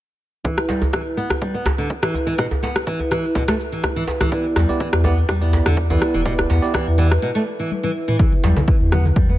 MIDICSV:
0, 0, Header, 1, 6, 480
1, 0, Start_track
1, 0, Key_signature, 1, "minor"
1, 0, Tempo, 483871
1, 449, Time_signature, 4, 2, 24, 8
1, 9308, End_track
2, 0, Start_track
2, 0, Title_t, "Tine electric piano"
2, 0, Program_c, 0, 4
2, 4285, Note_on_c, 0, 64, 64
2, 4286, Note_on_c, 0, 59, 73
2, 4286, Note_on_c, 0, 67, 63
2, 4288, Note_on_c, 0, 74, 79
2, 4623, Note_off_c, 0, 59, 0
2, 4623, Note_off_c, 0, 64, 0
2, 4623, Note_off_c, 0, 67, 0
2, 4624, Note_off_c, 0, 74, 0
2, 4652, Note_on_c, 0, 59, 91
2, 4653, Note_on_c, 0, 64, 79
2, 4653, Note_on_c, 0, 67, 82
2, 4654, Note_on_c, 0, 74, 98
2, 4980, Note_off_c, 0, 59, 0
2, 4981, Note_off_c, 0, 64, 0
2, 4981, Note_off_c, 0, 67, 0
2, 4981, Note_off_c, 0, 74, 0
2, 5003, Note_on_c, 0, 74, 96
2, 5004, Note_on_c, 0, 67, 80
2, 5005, Note_on_c, 0, 59, 87
2, 5005, Note_on_c, 0, 64, 79
2, 5082, Note_off_c, 0, 74, 0
2, 5083, Note_off_c, 0, 59, 0
2, 5083, Note_off_c, 0, 64, 0
2, 5083, Note_off_c, 0, 67, 0
2, 5369, Note_on_c, 0, 59, 88
2, 5370, Note_on_c, 0, 67, 80
2, 5371, Note_on_c, 0, 64, 79
2, 5371, Note_on_c, 0, 74, 94
2, 5822, Note_off_c, 0, 59, 0
2, 5822, Note_off_c, 0, 67, 0
2, 5823, Note_off_c, 0, 64, 0
2, 5823, Note_off_c, 0, 74, 0
2, 5853, Note_on_c, 0, 67, 70
2, 5854, Note_on_c, 0, 59, 81
2, 5854, Note_on_c, 0, 64, 73
2, 5855, Note_on_c, 0, 74, 89
2, 6181, Note_off_c, 0, 59, 0
2, 6181, Note_off_c, 0, 64, 0
2, 6181, Note_off_c, 0, 67, 0
2, 6182, Note_off_c, 0, 74, 0
2, 6207, Note_on_c, 0, 64, 66
2, 6208, Note_on_c, 0, 59, 73
2, 6208, Note_on_c, 0, 67, 68
2, 6208, Note_on_c, 0, 74, 83
2, 6543, Note_off_c, 0, 64, 0
2, 6544, Note_off_c, 0, 59, 0
2, 6544, Note_off_c, 0, 67, 0
2, 6544, Note_off_c, 0, 74, 0
2, 6571, Note_on_c, 0, 67, 84
2, 6571, Note_on_c, 0, 74, 97
2, 6572, Note_on_c, 0, 59, 90
2, 6572, Note_on_c, 0, 64, 81
2, 6900, Note_off_c, 0, 59, 0
2, 6900, Note_off_c, 0, 64, 0
2, 6900, Note_off_c, 0, 67, 0
2, 6900, Note_off_c, 0, 74, 0
2, 6929, Note_on_c, 0, 64, 80
2, 6929, Note_on_c, 0, 74, 94
2, 6930, Note_on_c, 0, 59, 87
2, 6930, Note_on_c, 0, 67, 80
2, 7005, Note_off_c, 0, 64, 0
2, 7005, Note_off_c, 0, 74, 0
2, 7006, Note_off_c, 0, 59, 0
2, 7006, Note_off_c, 0, 67, 0
2, 9308, End_track
3, 0, Start_track
3, 0, Title_t, "Nylon-string guitar"
3, 0, Program_c, 1, 24
3, 443, Note_on_c, 1, 52, 81
3, 565, Note_off_c, 1, 52, 0
3, 685, Note_on_c, 1, 55, 72
3, 806, Note_off_c, 1, 55, 0
3, 927, Note_on_c, 1, 52, 81
3, 996, Note_off_c, 1, 52, 0
3, 1163, Note_on_c, 1, 59, 94
3, 1285, Note_off_c, 1, 59, 0
3, 1404, Note_on_c, 1, 55, 83
3, 1526, Note_off_c, 1, 55, 0
3, 1531, Note_on_c, 1, 59, 75
3, 1636, Note_off_c, 1, 59, 0
3, 1768, Note_on_c, 1, 50, 96
3, 1874, Note_off_c, 1, 50, 0
3, 2007, Note_on_c, 1, 52, 97
3, 2114, Note_off_c, 1, 52, 0
3, 2247, Note_on_c, 1, 52, 97
3, 2313, Note_off_c, 1, 52, 0
3, 2361, Note_on_c, 1, 47, 94
3, 2433, Note_off_c, 1, 47, 0
3, 2605, Note_on_c, 1, 59, 73
3, 2720, Note_off_c, 1, 59, 0
3, 2846, Note_on_c, 1, 52, 100
3, 2960, Note_off_c, 1, 52, 0
3, 3085, Note_on_c, 1, 52, 96
3, 3206, Note_off_c, 1, 52, 0
3, 3326, Note_on_c, 1, 47, 98
3, 3395, Note_off_c, 1, 47, 0
3, 3451, Note_on_c, 1, 57, 102
3, 3515, Note_off_c, 1, 57, 0
3, 3693, Note_on_c, 1, 52, 72
3, 3797, Note_off_c, 1, 52, 0
3, 3931, Note_on_c, 1, 52, 100
3, 3994, Note_off_c, 1, 52, 0
3, 4171, Note_on_c, 1, 52, 100
3, 4277, Note_off_c, 1, 52, 0
3, 4289, Note_on_c, 1, 52, 80
3, 4408, Note_off_c, 1, 52, 0
3, 4527, Note_on_c, 1, 55, 73
3, 4647, Note_off_c, 1, 55, 0
3, 4766, Note_on_c, 1, 52, 78
3, 4835, Note_off_c, 1, 52, 0
3, 5005, Note_on_c, 1, 59, 99
3, 5126, Note_off_c, 1, 59, 0
3, 5248, Note_on_c, 1, 55, 78
3, 5368, Note_off_c, 1, 55, 0
3, 5374, Note_on_c, 1, 59, 75
3, 5477, Note_off_c, 1, 59, 0
3, 5615, Note_on_c, 1, 50, 98
3, 5718, Note_off_c, 1, 50, 0
3, 5854, Note_on_c, 1, 52, 99
3, 5957, Note_off_c, 1, 52, 0
3, 6092, Note_on_c, 1, 52, 100
3, 6155, Note_off_c, 1, 52, 0
3, 6207, Note_on_c, 1, 47, 98
3, 6276, Note_off_c, 1, 47, 0
3, 6446, Note_on_c, 1, 59, 76
3, 6560, Note_off_c, 1, 59, 0
3, 6686, Note_on_c, 1, 52, 100
3, 6801, Note_off_c, 1, 52, 0
3, 6924, Note_on_c, 1, 52, 99
3, 7046, Note_off_c, 1, 52, 0
3, 7165, Note_on_c, 1, 47, 99
3, 7235, Note_off_c, 1, 47, 0
3, 7291, Note_on_c, 1, 57, 101
3, 7355, Note_off_c, 1, 57, 0
3, 7534, Note_on_c, 1, 52, 76
3, 7637, Note_off_c, 1, 52, 0
3, 7771, Note_on_c, 1, 52, 103
3, 7835, Note_off_c, 1, 52, 0
3, 8014, Note_on_c, 1, 52, 97
3, 8113, Note_off_c, 1, 52, 0
3, 8125, Note_on_c, 1, 52, 82
3, 8246, Note_off_c, 1, 52, 0
3, 8368, Note_on_c, 1, 55, 74
3, 8488, Note_off_c, 1, 55, 0
3, 8610, Note_on_c, 1, 52, 79
3, 8677, Note_off_c, 1, 52, 0
3, 8851, Note_on_c, 1, 59, 99
3, 8969, Note_off_c, 1, 59, 0
3, 9091, Note_on_c, 1, 55, 84
3, 9209, Note_off_c, 1, 55, 0
3, 9219, Note_on_c, 1, 59, 74
3, 9308, Note_off_c, 1, 59, 0
3, 9308, End_track
4, 0, Start_track
4, 0, Title_t, "Sub bass"
4, 0, Program_c, 2, 38
4, 4525, Note_on_c, 2, 40, 100
4, 4620, Note_off_c, 2, 40, 0
4, 4891, Note_on_c, 2, 40, 92
4, 5200, Note_off_c, 2, 40, 0
4, 5245, Note_on_c, 2, 40, 82
4, 5561, Note_off_c, 2, 40, 0
4, 5614, Note_on_c, 2, 40, 99
4, 5921, Note_off_c, 2, 40, 0
4, 6093, Note_on_c, 2, 28, 102
4, 6401, Note_off_c, 2, 28, 0
4, 6449, Note_on_c, 2, 40, 99
4, 6542, Note_off_c, 2, 40, 0
4, 6816, Note_on_c, 2, 40, 90
4, 7122, Note_off_c, 2, 40, 0
4, 8370, Note_on_c, 2, 40, 99
4, 8463, Note_off_c, 2, 40, 0
4, 8733, Note_on_c, 2, 40, 92
4, 9041, Note_off_c, 2, 40, 0
4, 9090, Note_on_c, 2, 40, 83
4, 9308, Note_off_c, 2, 40, 0
4, 9308, End_track
5, 0, Start_track
5, 0, Title_t, "Djembe"
5, 441, Note_on_c, 9, 63, 66
5, 540, Note_off_c, 9, 63, 0
5, 680, Note_on_c, 9, 62, 75
5, 779, Note_off_c, 9, 62, 0
5, 810, Note_on_c, 9, 63, 95
5, 909, Note_off_c, 9, 63, 0
5, 1289, Note_on_c, 9, 63, 66
5, 1388, Note_off_c, 9, 63, 0
5, 1643, Note_on_c, 9, 62, 84
5, 1644, Note_on_c, 9, 63, 94
5, 1742, Note_off_c, 9, 62, 0
5, 1743, Note_off_c, 9, 63, 0
5, 2126, Note_on_c, 9, 63, 65
5, 2225, Note_off_c, 9, 63, 0
5, 2493, Note_on_c, 9, 63, 97
5, 2592, Note_off_c, 9, 63, 0
5, 2614, Note_on_c, 9, 62, 73
5, 2713, Note_off_c, 9, 62, 0
5, 2971, Note_on_c, 9, 63, 60
5, 3070, Note_off_c, 9, 63, 0
5, 3333, Note_on_c, 9, 63, 102
5, 3432, Note_off_c, 9, 63, 0
5, 3453, Note_on_c, 9, 62, 87
5, 3552, Note_off_c, 9, 62, 0
5, 3803, Note_on_c, 9, 63, 72
5, 3903, Note_off_c, 9, 63, 0
5, 4043, Note_on_c, 9, 62, 78
5, 4142, Note_off_c, 9, 62, 0
5, 4177, Note_on_c, 9, 63, 93
5, 4276, Note_off_c, 9, 63, 0
5, 4526, Note_on_c, 9, 62, 78
5, 4625, Note_off_c, 9, 62, 0
5, 4652, Note_on_c, 9, 63, 63
5, 4751, Note_off_c, 9, 63, 0
5, 4999, Note_on_c, 9, 63, 90
5, 5099, Note_off_c, 9, 63, 0
5, 5486, Note_on_c, 9, 63, 69
5, 5488, Note_on_c, 9, 62, 88
5, 5585, Note_off_c, 9, 63, 0
5, 5587, Note_off_c, 9, 62, 0
5, 5859, Note_on_c, 9, 63, 89
5, 5958, Note_off_c, 9, 63, 0
5, 6331, Note_on_c, 9, 63, 71
5, 6430, Note_off_c, 9, 63, 0
5, 6446, Note_on_c, 9, 62, 76
5, 6545, Note_off_c, 9, 62, 0
5, 6691, Note_on_c, 9, 63, 83
5, 6791, Note_off_c, 9, 63, 0
5, 8135, Note_on_c, 9, 63, 67
5, 8234, Note_off_c, 9, 63, 0
5, 8369, Note_on_c, 9, 62, 86
5, 8468, Note_off_c, 9, 62, 0
5, 8496, Note_on_c, 9, 63, 93
5, 8596, Note_off_c, 9, 63, 0
5, 8979, Note_on_c, 9, 63, 69
5, 9078, Note_off_c, 9, 63, 0
5, 9308, End_track
6, 0, Start_track
6, 0, Title_t, "Drums"
6, 445, Note_on_c, 9, 36, 114
6, 455, Note_on_c, 9, 82, 37
6, 544, Note_off_c, 9, 36, 0
6, 554, Note_off_c, 9, 82, 0
6, 573, Note_on_c, 9, 37, 89
6, 672, Note_off_c, 9, 37, 0
6, 691, Note_on_c, 9, 82, 88
6, 791, Note_off_c, 9, 82, 0
6, 820, Note_on_c, 9, 82, 50
6, 919, Note_off_c, 9, 82, 0
6, 925, Note_on_c, 9, 36, 100
6, 928, Note_on_c, 9, 37, 78
6, 935, Note_on_c, 9, 82, 38
6, 1025, Note_off_c, 9, 36, 0
6, 1027, Note_off_c, 9, 37, 0
6, 1034, Note_off_c, 9, 82, 0
6, 1173, Note_on_c, 9, 82, 85
6, 1272, Note_off_c, 9, 82, 0
6, 1293, Note_on_c, 9, 37, 91
6, 1301, Note_on_c, 9, 82, 50
6, 1393, Note_off_c, 9, 37, 0
6, 1400, Note_off_c, 9, 82, 0
6, 1406, Note_on_c, 9, 36, 116
6, 1415, Note_on_c, 9, 82, 36
6, 1505, Note_off_c, 9, 36, 0
6, 1514, Note_off_c, 9, 82, 0
6, 1649, Note_on_c, 9, 37, 80
6, 1657, Note_on_c, 9, 82, 90
6, 1749, Note_off_c, 9, 37, 0
6, 1756, Note_off_c, 9, 82, 0
6, 1782, Note_on_c, 9, 82, 50
6, 1881, Note_off_c, 9, 82, 0
6, 1886, Note_on_c, 9, 36, 100
6, 1897, Note_on_c, 9, 82, 41
6, 1985, Note_off_c, 9, 36, 0
6, 1997, Note_off_c, 9, 82, 0
6, 2012, Note_on_c, 9, 37, 100
6, 2111, Note_off_c, 9, 37, 0
6, 2133, Note_on_c, 9, 82, 89
6, 2232, Note_off_c, 9, 82, 0
6, 2262, Note_on_c, 9, 82, 53
6, 2361, Note_off_c, 9, 82, 0
6, 2366, Note_on_c, 9, 36, 124
6, 2368, Note_on_c, 9, 37, 80
6, 2375, Note_on_c, 9, 82, 39
6, 2466, Note_off_c, 9, 36, 0
6, 2467, Note_off_c, 9, 37, 0
6, 2474, Note_off_c, 9, 82, 0
6, 2616, Note_on_c, 9, 82, 92
6, 2716, Note_off_c, 9, 82, 0
6, 2736, Note_on_c, 9, 37, 93
6, 2743, Note_on_c, 9, 82, 52
6, 2835, Note_off_c, 9, 37, 0
6, 2842, Note_off_c, 9, 82, 0
6, 2847, Note_on_c, 9, 36, 101
6, 2858, Note_on_c, 9, 82, 39
6, 2946, Note_off_c, 9, 36, 0
6, 2957, Note_off_c, 9, 82, 0
6, 3091, Note_on_c, 9, 37, 78
6, 3098, Note_on_c, 9, 82, 90
6, 3190, Note_off_c, 9, 37, 0
6, 3197, Note_off_c, 9, 82, 0
6, 3223, Note_on_c, 9, 82, 53
6, 3322, Note_off_c, 9, 82, 0
6, 3326, Note_on_c, 9, 36, 118
6, 3337, Note_on_c, 9, 82, 38
6, 3425, Note_off_c, 9, 36, 0
6, 3436, Note_off_c, 9, 82, 0
6, 3455, Note_on_c, 9, 37, 96
6, 3554, Note_off_c, 9, 37, 0
6, 3575, Note_on_c, 9, 82, 95
6, 3674, Note_off_c, 9, 82, 0
6, 3701, Note_on_c, 9, 82, 53
6, 3800, Note_off_c, 9, 82, 0
6, 3806, Note_on_c, 9, 36, 107
6, 3807, Note_on_c, 9, 37, 85
6, 3814, Note_on_c, 9, 82, 40
6, 3905, Note_off_c, 9, 36, 0
6, 3906, Note_off_c, 9, 37, 0
6, 3913, Note_off_c, 9, 82, 0
6, 4054, Note_on_c, 9, 82, 94
6, 4153, Note_off_c, 9, 82, 0
6, 4174, Note_on_c, 9, 37, 93
6, 4181, Note_on_c, 9, 82, 53
6, 4273, Note_off_c, 9, 37, 0
6, 4280, Note_off_c, 9, 82, 0
6, 4285, Note_on_c, 9, 36, 123
6, 4293, Note_on_c, 9, 82, 39
6, 4385, Note_off_c, 9, 36, 0
6, 4392, Note_off_c, 9, 82, 0
6, 4524, Note_on_c, 9, 37, 78
6, 4532, Note_on_c, 9, 82, 93
6, 4624, Note_off_c, 9, 37, 0
6, 4631, Note_off_c, 9, 82, 0
6, 4658, Note_on_c, 9, 82, 52
6, 4757, Note_off_c, 9, 82, 0
6, 4765, Note_on_c, 9, 36, 110
6, 4772, Note_on_c, 9, 82, 40
6, 4864, Note_off_c, 9, 36, 0
6, 4872, Note_off_c, 9, 82, 0
6, 4890, Note_on_c, 9, 37, 100
6, 4989, Note_off_c, 9, 37, 0
6, 5013, Note_on_c, 9, 82, 93
6, 5112, Note_off_c, 9, 82, 0
6, 5139, Note_on_c, 9, 82, 52
6, 5238, Note_off_c, 9, 82, 0
6, 5245, Note_on_c, 9, 36, 124
6, 5245, Note_on_c, 9, 37, 73
6, 5253, Note_on_c, 9, 82, 38
6, 5344, Note_off_c, 9, 36, 0
6, 5345, Note_off_c, 9, 37, 0
6, 5352, Note_off_c, 9, 82, 0
6, 5493, Note_on_c, 9, 82, 97
6, 5593, Note_off_c, 9, 82, 0
6, 5614, Note_on_c, 9, 37, 93
6, 5621, Note_on_c, 9, 82, 53
6, 5713, Note_off_c, 9, 37, 0
6, 5720, Note_off_c, 9, 82, 0
6, 5725, Note_on_c, 9, 36, 110
6, 5737, Note_on_c, 9, 82, 41
6, 5824, Note_off_c, 9, 36, 0
6, 5836, Note_off_c, 9, 82, 0
6, 5968, Note_on_c, 9, 37, 79
6, 5976, Note_on_c, 9, 82, 99
6, 6068, Note_off_c, 9, 37, 0
6, 6075, Note_off_c, 9, 82, 0
6, 6102, Note_on_c, 9, 82, 56
6, 6201, Note_off_c, 9, 82, 0
6, 6206, Note_on_c, 9, 36, 121
6, 6218, Note_on_c, 9, 82, 38
6, 6305, Note_off_c, 9, 36, 0
6, 6318, Note_off_c, 9, 82, 0
6, 6336, Note_on_c, 9, 37, 86
6, 6436, Note_off_c, 9, 37, 0
6, 6458, Note_on_c, 9, 82, 95
6, 6557, Note_off_c, 9, 82, 0
6, 6585, Note_on_c, 9, 82, 52
6, 6684, Note_off_c, 9, 82, 0
6, 6687, Note_on_c, 9, 36, 105
6, 6692, Note_on_c, 9, 37, 77
6, 6699, Note_on_c, 9, 82, 40
6, 6786, Note_off_c, 9, 36, 0
6, 6791, Note_off_c, 9, 37, 0
6, 6798, Note_off_c, 9, 82, 0
6, 6937, Note_on_c, 9, 82, 91
6, 7037, Note_off_c, 9, 82, 0
6, 7058, Note_on_c, 9, 37, 89
6, 7065, Note_on_c, 9, 82, 52
6, 7157, Note_off_c, 9, 37, 0
6, 7165, Note_off_c, 9, 82, 0
6, 7652, Note_on_c, 9, 48, 63
6, 7752, Note_off_c, 9, 48, 0
6, 7779, Note_on_c, 9, 48, 65
6, 7879, Note_off_c, 9, 48, 0
6, 8018, Note_on_c, 9, 45, 81
6, 8117, Note_off_c, 9, 45, 0
6, 8129, Note_on_c, 9, 36, 121
6, 8132, Note_on_c, 9, 47, 89
6, 8139, Note_on_c, 9, 82, 38
6, 8228, Note_off_c, 9, 36, 0
6, 8231, Note_off_c, 9, 47, 0
6, 8238, Note_off_c, 9, 82, 0
6, 8258, Note_on_c, 9, 62, 51
6, 8358, Note_off_c, 9, 62, 0
6, 8378, Note_on_c, 9, 82, 91
6, 8381, Note_on_c, 9, 63, 68
6, 8477, Note_off_c, 9, 82, 0
6, 8481, Note_off_c, 9, 63, 0
6, 8499, Note_on_c, 9, 64, 108
6, 8504, Note_on_c, 9, 82, 50
6, 8598, Note_off_c, 9, 64, 0
6, 8603, Note_off_c, 9, 82, 0
6, 8608, Note_on_c, 9, 36, 105
6, 8619, Note_on_c, 9, 82, 40
6, 8708, Note_off_c, 9, 36, 0
6, 8718, Note_off_c, 9, 82, 0
6, 8738, Note_on_c, 9, 62, 41
6, 8837, Note_off_c, 9, 62, 0
6, 8851, Note_on_c, 9, 37, 92
6, 8854, Note_on_c, 9, 63, 89
6, 8855, Note_on_c, 9, 64, 99
6, 8858, Note_on_c, 9, 82, 88
6, 8950, Note_off_c, 9, 37, 0
6, 8954, Note_off_c, 9, 63, 0
6, 8955, Note_off_c, 9, 64, 0
6, 8957, Note_off_c, 9, 82, 0
6, 8975, Note_on_c, 9, 47, 81
6, 8982, Note_on_c, 9, 82, 50
6, 9074, Note_off_c, 9, 47, 0
6, 9082, Note_off_c, 9, 82, 0
6, 9089, Note_on_c, 9, 36, 120
6, 9089, Note_on_c, 9, 62, 58
6, 9091, Note_on_c, 9, 63, 107
6, 9100, Note_on_c, 9, 82, 36
6, 9188, Note_off_c, 9, 36, 0
6, 9188, Note_off_c, 9, 62, 0
6, 9190, Note_off_c, 9, 63, 0
6, 9199, Note_off_c, 9, 82, 0
6, 9308, End_track
0, 0, End_of_file